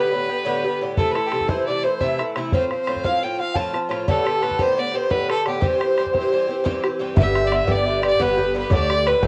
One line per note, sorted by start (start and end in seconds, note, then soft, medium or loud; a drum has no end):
0.00 0.10 A2 medium
0.00 0.11 D3 medium
0.00 0.12 B3 medium
0.00 0.12 G4 medium
0.00 0.51 B4 medium
0.00 0.77 B4 medium
0.11 0.29 A2 medium
0.11 0.29 D3 soft
0.11 0.28 B3 medium
0.11 0.28 G4 medium
0.29 0.44 D3 soft
0.29 0.45 B3 soft
0.29 0.45 G4 medium
0.45 0.64 A2 medium
0.45 0.64 D3 medium
0.45 0.64 B3 medium
0.45 0.63 G4 loud
0.64 0.81 D3 soft
0.64 0.81 B3 medium
0.64 0.81 G4 medium
0.81 0.97 A2 medium
0.81 0.97 D3 medium
0.81 0.98 B3 medium
0.81 0.99 G4 medium
0.97 1.16 C3 medium
0.97 1.16 E3 medium
0.97 1.16 A3 medium
0.97 1.15 E4 medium
0.97 1.13 A4 medium
0.97 1.15 A4 medium
0.97 bodhran medium
1.11 1.28 A4 medium
1.11 1.16 B4 medium
1.15 1.32 E3 soft
1.15 1.33 A3 soft
1.15 1.33 E4 medium
1.15 1.31 A4 medium
1.15 bodhran medium
1.26 1.31 G4 medium
1.26 1.49 A4 medium
1.32 1.49 C3 medium
1.32 1.49 E3 medium
1.32 1.49 A3 medium
1.32 1.49 E4 medium
1.32 1.51 A4 medium
1.32 bodhran medium
1.41 bodhran soft
1.47 1.66 C3 medium
1.47 1.67 E3 medium
1.47 1.68 A3 medium
1.47 1.68 E4 medium
1.47 1.65 C5 medium
1.47 1.69 C5 medium
1.47 bodhran medium
1.66 1.84 C3 medium
1.66 1.85 E3 medium
1.66 1.84 A3 medium
1.66 1.84 E4 soft
1.66 1.84 D5 medium
1.66 1.86 D5 medium
1.83 2.00 E3 soft
1.83 2.01 A3 soft
1.83 2.01 E4 soft
1.83 2.02 C5 medium
2.00 2.19 C3 medium
2.00 2.20 E3 medium
2.00 2.19 A3 medium
2.00 2.18 E4 medium
2.00 2.19 E5 medium
2.00 bodhran medium
2.19 2.35 E3 soft
2.19 2.36 A3 soft
2.19 2.36 E4 soft
2.19 bodhran medium
2.36 2.52 C3 medium
2.36 2.53 E3 medium
2.36 2.53 A3 medium
2.36 2.54 E4 medium
2.36 bodhran medium
2.52 2.71 A2 medium
2.52 2.71 F3 medium
2.52 2.71 C4 medium
2.52 2.70 F4 medium
2.52 3.07 C5 medium
2.52 3.05 C5 medium
2.52 bodhran medium
2.71 2.87 F3 soft
2.71 2.88 C4 soft
2.71 2.88 F4 soft
2.71 bodhran medium
2.87 3.04 A2 medium
2.87 3.05 F3 medium
2.87 3.04 C4 medium
2.87 3.03 F4 medium
2.87 bodhran medium
2.96 bodhran soft
3.03 3.22 A2 soft
3.03 3.22 F3 medium
3.03 3.23 C4 medium
3.03 3.23 F4 medium
3.03 3.25 F5 medium
3.03 3.22 F5 medium
3.03 bodhran medium
3.23 3.39 A2 medium
3.23 3.40 F3 medium
3.23 3.40 C4 medium
3.23 3.38 F4 medium
3.23 3.42 G5 medium
3.23 3.39 G5 medium
3.39 3.55 F3 soft
3.39 3.55 C4 soft
3.39 3.55 F4 soft
3.39 3.57 F5 medium
3.39 3.56 F5 medium
3.55 3.74 A2 medium
3.55 3.74 F3 medium
3.55 3.73 C4 medium
3.55 3.72 F4 medium
3.55 3.74 A5 medium
3.55 bodhran medium
3.73 3.89 F3 soft
3.73 3.90 C4 soft
3.73 3.90 F4 soft
3.73 bodhran soft
3.89 4.07 A2 medium
3.89 4.07 F3 medium
3.89 4.08 C4 medium
3.89 4.08 F4 medium
3.89 bodhran medium
4.08 4.26 A2 medium
4.08 4.26 D3 medium
4.08 4.25 B3 medium
4.08 4.23 G4 medium
4.08 4.44 A4 medium
4.08 4.63 A4 medium
4.08 bodhran medium
4.24 4.41 D3 soft
4.24 4.42 B3 soft
4.24 4.42 G4 soft
4.24 bodhran medium
4.41 4.59 A2 medium
4.41 4.58 D3 medium
4.41 4.58 B3 medium
4.41 4.58 G4 medium
4.41 4.61 B4 medium
4.41 bodhran soft
4.51 bodhran soft
4.59 4.76 A2 soft
4.59 4.77 D3 medium
4.59 4.77 B3 medium
4.59 4.78 G4 medium
4.59 4.79 C5 medium
4.59 4.81 C5 medium
4.59 bodhran medium
4.77 4.94 A2 medium
4.77 4.94 D3 soft
4.77 4.94 B3 medium
4.77 4.93 G4 medium
4.77 4.93 D5 medium
4.77 4.97 D5 medium
4.94 5.09 D3 soft
4.94 5.10 B3 soft
4.94 5.11 G4 medium
4.94 5.10 C5 medium
4.94 5.13 C5 medium
5.10 5.29 A2 medium
5.10 5.29 D3 medium
5.10 5.29 B3 medium
5.10 5.28 G4 medium
5.10 5.30 B4 medium
5.10 5.29 B4 medium
5.10 bodhran medium
5.29 5.45 D3 soft
5.29 5.46 B3 soft
5.29 5.46 G4 soft
5.29 5.48 A4 medium
5.29 5.45 A4 loud
5.29 bodhran medium
5.46 5.60 A2 medium
5.46 5.61 D3 medium
5.46 5.62 B3 medium
5.46 5.63 G4 medium
5.46 5.61 G4 medium
5.46 5.67 G4 medium
5.46 bodhran medium
5.61 5.80 G2 medium
5.61 5.80 E3 medium
5.61 5.80 C4 medium
5.61 5.79 G4 medium
5.61 6.84 C5 medium
5.61 bodhran medium
5.66 6.86 C5 medium
5.80 5.97 E3 soft
5.80 5.98 C4 soft
5.80 5.97 G4 soft
5.80 bodhran medium
5.98 6.14 G2 soft
5.98 6.13 E3 medium
5.98 6.13 C4 medium
5.98 6.12 G4 medium
5.98 bodhran medium
6.06 bodhran soft
6.13 6.31 G2 medium
6.13 6.32 E3 medium
6.13 6.32 C4 medium
6.13 6.32 G4 medium
6.13 bodhran medium
6.32 6.49 G2 medium
6.32 6.49 E3 medium
6.32 6.48 C4 medium
6.32 6.46 G4 medium
6.47 6.64 E3 soft
6.47 6.64 C4 medium
6.47 6.64 G4 medium
6.64 6.83 G2 medium
6.64 6.84 E3 medium
6.64 6.84 C4 medium
6.64 6.83 G4 medium
6.64 bodhran medium
6.84 6.99 E3 soft
6.84 7.00 C4 soft
6.84 7.00 G4 medium
6.84 bodhran medium
6.99 7.15 G2 medium
6.99 7.16 E3 medium
6.99 7.17 C4 medium
6.99 7.17 G4 medium
7.16 7.59 G1 loud
7.16 7.35 G2 medium
7.16 7.35 D3 medium
7.16 7.34 B3 medium
7.16 7.33 G4 medium
7.16 7.49 E5 medium
7.16 7.42 E5 medium
7.16 bodhran loud
7.20 7.48 E5 loud
7.35 7.50 D3 soft
7.35 7.51 B3 soft
7.35 7.51 G4 soft
7.35 bodhran medium
7.44 7.52 D5 medium
7.44 7.57 D5 medium
7.50 7.68 G2 medium
7.50 7.67 D3 medium
7.50 7.66 B3 medium
7.50 7.66 G4 medium
7.50 7.67 E5 medium
7.50 7.70 E5 medium
7.50 bodhran medium
7.55 7.73 E5 medium
7.67 8.11 G1 medium
7.67 7.85 G2 medium
7.67 7.85 D3 medium
7.67 7.87 B3 medium
7.67 7.86 G4 medium
7.67 7.87 D5 medium
7.67 8.02 D5 medium
7.67 bodhran medium
7.71 8.05 D5 medium
7.86 8.03 G2 medium
7.86 8.03 D3 medium
7.86 8.02 B3 medium
7.86 8.01 G4 medium
7.86 8.04 E5 medium
8.02 8.18 D3 soft
8.02 8.19 B3 soft
8.02 8.19 G4 soft
8.02 8.22 D5 medium
8.02 8.21 D5 medium
8.02 bodhran medium
8.06 8.24 D5 medium
8.19 8.62 G1 medium
8.19 8.38 G2 medium
8.19 8.38 D3 medium
8.19 8.37 B3 medium
8.19 8.36 G4 medium
8.19 8.71 B4 medium
8.19 8.53 B4 medium
8.19 8.56 B4 medium
8.19 bodhran medium
8.37 8.54 D3 soft
8.37 8.54 B3 soft
8.37 8.55 G4 medium
8.37 bodhran soft
8.54 8.70 G2 medium
8.54 8.71 D3 medium
8.54 8.72 B3 medium
8.54 8.71 G4 medium
8.54 8.71 B4 medium
8.54 8.72 B4 medium
8.70 9.13 D2 medium
8.70 8.90 A2 medium
8.70 8.90 D3 medium
8.70 8.90 A3 medium
8.70 8.89 G4 medium
8.70 9.07 D5 medium
8.70 9.09 D5 medium
8.70 9.09 D5 loud
8.70 bodhran medium
8.90 9.05 D3 soft
8.90 9.06 A3 medium
8.90 9.06 G4 medium
8.90 bodhran medium
9.06 9.23 A2 medium
9.06 9.22 D3 medium
9.06 9.22 A3 medium
9.06 9.21 G4 medium
9.06 9.26 B4 medium
9.06 9.24 B4 medium
9.06 9.26 B4 medium
9.06 bodhran medium
9.22 9.27 D2 loud
9.22 9.27 A2 medium
9.22 9.27 D3 medium
9.22 9.27 A3 medium
9.22 9.27 G4 medium
9.22 9.27 C5 medium
9.22 bodhran medium